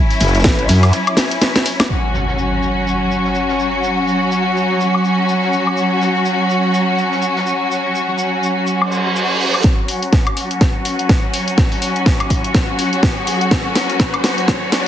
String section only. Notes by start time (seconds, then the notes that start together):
Already playing: F#3 C#4 E4
1.90 F#3 C#4 F#4
9.64 F#3 C#4 F#4